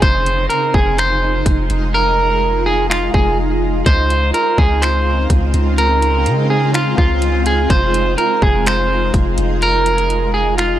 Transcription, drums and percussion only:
0.02 kick loud
0.02 closed hi-hat medium
0.26 closed hi-hat medium
0.50 closed hi-hat medium
0.74 kick loud
0.98 finger snap loud
0.98 closed hi-hat medium
1.46 kick medium
1.46 closed hi-hat medium
1.70 closed hi-hat medium
2.91 finger snap loud
3.14 kick medium
3.86 kick loud
3.86 closed hi-hat medium
4.10 closed hi-hat medium
4.34 closed hi-hat medium
4.58 kick loud
4.82 finger snap loud
4.82 closed hi-hat medium
5.30 kick medium
5.30 closed hi-hat medium
5.54 closed hi-hat medium
5.78 closed hi-hat medium
6.02 closed hi-hat medium
6.26 closed hi-hat medium
6.74 finger snap loud
6.74 closed hi-hat medium
6.98 kick medium
7.22 closed hi-hat medium
7.46 closed hi-hat medium
7.70 kick loud
7.70 closed hi-hat medium
7.94 closed hi-hat medium
8.18 closed hi-hat medium
8.42 kick loud
8.66 finger snap loud
8.66 closed hi-hat medium
9.14 kick medium
9.14 closed hi-hat medium
9.38 closed hi-hat medium
9.62 closed hi-hat medium
9.86 closed hi-hat medium
9.98 closed hi-hat medium
10.10 closed hi-hat medium
10.58 finger snap loud
10.58 closed hi-hat medium

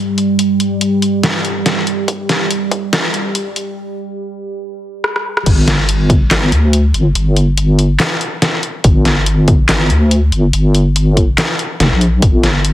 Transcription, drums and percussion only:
0.18 closed hi-hat medium
0.39 closed hi-hat medium
0.60 closed hi-hat medium
0.81 closed hi-hat medium
1.02 closed hi-hat medium
1.23 snare loud
1.23 closed hi-hat medium
1.45 closed hi-hat medium
1.66 snare medium
1.66 closed hi-hat medium
1.87 closed hi-hat medium
2.08 kick loud
2.08 closed hi-hat medium
2.29 snare medium
2.29 closed hi-hat soft
2.51 closed hi-hat medium
2.71 kick loud
2.71 closed hi-hat medium
2.93 snare loud
2.93 closed hi-hat medium
3.14 closed hi-hat medium
3.35 closed hi-hat medium
3.56 closed hi-hat medium
5.04 cross-stick medium
5.16 cross-stick medium
5.37 cross-stick medium
5.46 kick loud
5.46 closed hi-hat medium
5.46 crash loud
5.68 snare medium
5.68 closed hi-hat medium
5.89 closed hi-hat medium
6.10 kick loud
6.10 closed hi-hat medium
6.31 snare loud
6.31 clap medium
6.31 closed hi-hat medium
6.52 closed hi-hat medium
6.73 closed hi-hat medium
6.94 closed hi-hat medium
7.15 closed hi-hat medium
7.36 closed hi-hat medium
7.58 closed hi-hat medium
7.79 closed hi-hat medium
8.00 snare loud
8.00 clap loud
8.00 closed hi-hat medium
8.21 closed hi-hat medium
8.42 snare medium
8.42 closed hi-hat medium
8.63 closed hi-hat medium
8.84 kick loud
8.84 closed hi-hat medium
9.05 snare medium
9.05 closed hi-hat soft
9.26 closed hi-hat medium
9.48 kick loud
9.48 closed hi-hat medium
9.69 snare loud
9.69 clap medium
9.69 closed hi-hat medium
9.90 closed hi-hat soft
10.11 closed hi-hat medium
10.32 closed hi-hat soft
10.53 closed hi-hat medium
10.75 closed hi-hat medium
10.96 closed hi-hat medium
11.17 kick medium
11.17 closed hi-hat medium
11.38 snare loud
11.38 clap medium
11.38 closed hi-hat medium
11.59 closed hi-hat soft
11.80 snare medium
11.80 closed hi-hat medium
12.01 closed hi-hat soft
12.22 kick loud
12.22 closed hi-hat medium
12.43 snare medium
12.43 closed hi-hat medium
12.65 closed hi-hat medium

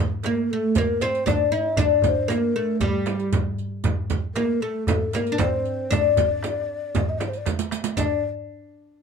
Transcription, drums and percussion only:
0.23 riq soft
0.23 darbuka tek medium
0.23 frame drum medium
0.75 riq medium
0.75 darbuka dum medium
0.75 frame drum medium
1.01 riq soft
1.01 frame drum medium
1.15 riq soft
1.27 riq medium
1.27 darbuka dum medium
1.27 frame drum medium
1.53 riq soft
1.53 darbuka ka soft
1.65 darbuka ka soft
1.77 riq medium
1.77 darbuka dum medium
1.77 frame drum medium
2.02 riq medium
2.02 darbuka dum medium
2.02 frame drum medium
2.29 riq soft
2.29 darbuka tek medium
2.29 frame drum medium
2.80 riq medium
2.80 darbuka dum medium
2.80 frame drum medium
3.06 riq soft
3.06 darbuka tek medium
3.06 frame drum medium
3.20 riq soft
3.32 riq medium
3.32 darbuka dum loud
3.32 frame drum medium
3.58 riq soft
3.58 darbuka ka soft
3.71 darbuka ka soft
3.84 riq medium
3.84 darbuka dum loud
3.84 frame drum medium
4.10 riq medium
4.10 frame drum medium
4.36 riq soft
4.36 darbuka tek medium
4.36 frame drum medium
4.87 riq medium
4.87 darbuka dum medium
4.87 frame drum loud
5.13 riq soft
5.13 darbuka tek medium
5.13 frame drum medium
5.27 riq soft
5.39 riq medium
5.39 darbuka dum loud
5.39 frame drum medium
5.65 riq soft
5.65 darbuka ka soft
5.92 riq medium
5.92 darbuka dum medium
5.92 frame drum medium
6.17 riq medium
6.17 darbuka dum medium
6.17 frame drum medium
6.43 riq soft
6.43 darbuka tek medium
6.43 frame drum medium
6.95 riq medium
6.95 darbuka dum medium
6.95 frame drum loud
7.20 riq soft
7.20 darbuka tek medium
7.20 frame drum medium
7.33 riq soft
7.33 darbuka ka soft
7.46 riq medium
7.46 darbuka tek medium
7.46 frame drum medium
7.59 riq medium
7.59 darbuka ka medium
7.71 riq medium
7.71 darbuka tek medium
7.84 riq medium
7.84 darbuka ka medium
7.97 riq medium
7.97 darbuka dum medium
7.97 frame drum medium

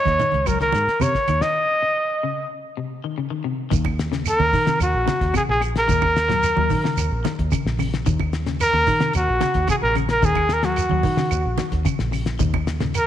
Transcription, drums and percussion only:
0.05 kick medium
0.05 snare soft
0.05 closed hi-hat soft
0.05 high conga medium
0.19 closed hi-hat soft
0.19 low conga medium
0.19 shekere soft
0.32 closed hi-hat soft
0.32 high conga medium
0.46 kick medium
0.46 closed hi-hat medium
0.46 high conga soft
0.46 claves medium
0.46 shekere medium
0.60 snare soft
0.60 closed hi-hat soft
0.72 snare soft
0.72 closed hi-hat medium
0.72 high conga medium
0.72 shekere soft
0.88 snare soft
0.88 closed hi-hat soft
1.00 closed hi-hat medium
1.00 high conga medium
1.00 claves medium
1.00 shekere medium
1.15 kick medium
1.15 snare soft
1.15 closed hi-hat soft
1.28 closed hi-hat medium
1.28 high conga medium
1.28 claves medium
1.28 shekere soft
1.41 snare medium
3.71 kick medium
3.71 closed hi-hat medium
3.71 high conga soft
3.71 low conga medium
3.71 shekere medium
3.85 kick medium
3.85 high conga medium
3.85 claves medium
3.99 snare medium
3.99 closed hi-hat medium
3.99 shekere soft
4.13 snare medium
4.13 closed hi-hat medium
4.26 closed hi-hat medium
4.26 high conga soft
4.26 claves medium
4.26 shekere medium
4.40 high conga medium
4.53 kick medium
4.53 open hi-hat medium
4.53 low conga medium
4.53 shekere soft
4.67 snare medium
4.67 closed hi-hat medium
4.67 high conga medium
4.80 closed hi-hat medium
4.80 claves medium
4.80 shekere medium
5.07 snare medium
5.07 closed hi-hat medium
5.07 high conga loud
5.07 shekere soft
5.21 kick medium
5.21 snare soft
5.21 closed hi-hat soft
5.34 kick medium
5.34 closed hi-hat medium
5.34 high conga medium
5.34 claves medium
5.34 shekere medium
5.62 closed hi-hat medium
5.62 claves medium
5.62 shekere soft
5.76 snare medium
5.76 closed hi-hat soft
5.89 kick loud
5.89 closed hi-hat medium
5.89 high conga soft
5.89 low conga medium
5.89 shekere medium
6.02 kick medium
6.02 high conga medium
6.02 claves medium
6.17 snare medium
6.17 closed hi-hat medium
6.17 shekere soft
6.30 snare medium
6.30 closed hi-hat soft
6.30 low conga medium
6.43 snare soft
6.43 closed hi-hat medium
6.43 high conga soft
6.43 claves medium
6.43 shekere medium
6.57 high conga medium
6.70 kick medium
6.70 open hi-hat medium
6.70 low conga medium
6.70 shekere soft
6.85 snare medium
6.97 closed hi-hat medium
6.97 high conga soft
6.97 claves medium
6.97 shekere medium
7.25 snare medium
7.25 closed hi-hat medium
7.25 high conga loud
7.25 shekere soft
7.39 kick medium
7.39 closed hi-hat medium
7.52 kick medium
7.52 closed hi-hat medium
7.52 high conga medium
7.52 claves medium
7.52 shekere medium
7.66 snare medium
7.79 open hi-hat medium
7.79 high conga medium
7.79 claves medium
7.79 shekere soft
7.94 snare medium
7.94 closed hi-hat medium
8.06 kick medium
8.06 closed hi-hat medium
8.06 high conga soft
8.06 low conga medium
8.06 shekere medium
8.20 kick medium
8.20 high conga medium
8.20 claves medium
8.33 snare medium
8.33 closed hi-hat medium
8.33 shekere soft
8.46 snare medium
8.46 closed hi-hat medium
8.60 snare soft
8.60 closed hi-hat medium
8.60 high conga soft
8.60 claves medium
8.60 shekere medium
8.73 high conga medium
8.87 kick medium
8.87 open hi-hat medium
8.87 low conga medium
8.87 shekere soft
9.00 snare medium
9.00 closed hi-hat medium
9.00 high conga medium
9.13 closed hi-hat medium
9.13 high conga soft
9.13 claves medium
9.13 shekere medium
9.41 snare medium
9.41 closed hi-hat medium
9.41 high conga loud
9.41 shekere soft
9.54 kick medium
9.54 snare soft
9.54 closed hi-hat medium
9.68 kick medium
9.68 closed hi-hat medium
9.68 high conga medium
9.68 claves medium
9.68 shekere medium
9.95 closed hi-hat medium
9.95 high conga medium
9.95 claves medium
9.95 shekere soft
10.09 snare medium
10.09 closed hi-hat medium
10.22 kick medium
10.22 closed hi-hat medium
10.22 high conga soft
10.22 low conga medium
10.22 shekere medium
10.35 kick medium
10.35 high conga medium
10.35 claves medium
10.49 snare medium
10.49 closed hi-hat medium
10.49 shekere soft
10.63 snare medium
10.63 closed hi-hat medium
10.76 closed hi-hat medium
10.76 high conga soft
10.76 claves medium
10.76 shekere medium
10.89 high conga medium
11.03 kick medium
11.03 open hi-hat medium
11.03 low conga medium
11.03 shekere soft
11.17 snare medium
11.17 high conga medium
11.31 closed hi-hat medium
11.31 high conga soft
11.31 claves medium
11.31 shekere medium
11.58 snare medium
11.58 closed hi-hat medium
11.58 high conga loud
11.58 shekere soft
11.72 kick medium
11.72 snare soft
11.72 closed hi-hat medium
11.85 kick medium
11.85 closed hi-hat medium
11.85 high conga medium
11.85 claves medium
11.85 shekere medium
11.99 snare medium
12.13 open hi-hat medium
12.13 claves medium
12.13 shekere soft
12.26 snare medium
12.26 closed hi-hat medium
12.39 kick medium
12.39 closed hi-hat medium
12.39 high conga soft
12.39 low conga medium
12.39 shekere medium
12.54 kick medium
12.54 high conga medium
12.54 claves medium
12.67 snare medium
12.67 closed hi-hat medium
12.67 shekere soft
12.80 snare medium
12.80 closed hi-hat medium
12.80 low conga medium
12.94 closed hi-hat medium
12.94 high conga soft
12.94 claves medium
12.94 shekere medium

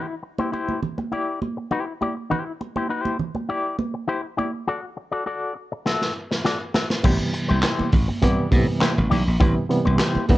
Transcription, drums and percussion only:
0.38 high conga medium
0.53 muted conga soft
0.69 high conga medium
0.83 muted conga soft
0.83 low conga medium
0.98 high conga medium
1.12 muted conga soft
1.42 muted conga soft
1.42 high conga medium
1.71 muted conga soft
2.02 high conga medium
2.32 low conga medium
2.61 muted conga soft
2.76 high conga medium
3.05 high conga medium
3.19 muted conga soft
3.19 low conga medium
3.35 high conga medium
3.79 muted conga soft
3.79 high conga medium
4.39 muted conga soft
4.39 high conga medium
5.86 snare medium
6.02 snare soft
6.31 snare medium
6.45 snare medium
6.74 snare medium
6.90 snare medium
7.04 kick loud
7.04 crash loud
7.04 low conga medium
7.34 closed hi-hat medium
7.50 high conga medium
7.63 snare loud
7.63 clap loud
7.63 closed hi-hat loud
7.79 high conga medium
7.92 kick loud
7.92 open hi-hat medium
7.92 muted conga soft
7.92 low conga medium
8.09 high conga medium
8.22 kick loud
8.22 closed hi-hat medium
8.22 muted conga soft
8.52 kick loud
8.52 open hi-hat medium
8.52 high conga medium
8.81 snare loud
8.81 clap medium
8.81 closed hi-hat loud
8.81 muted conga soft
8.81 high conga medium
9.12 open hi-hat medium
9.12 muted conga soft
9.12 high conga medium
9.12 low conga medium
9.41 kick loud
9.41 closed hi-hat medium
9.41 muted conga soft
9.41 low conga medium
9.71 closed hi-hat medium
9.85 high conga medium
9.99 snare loud
9.99 clap loud
9.99 closed hi-hat loud
10.15 high conga medium
10.29 kick loud
10.29 open hi-hat medium
10.29 low conga medium

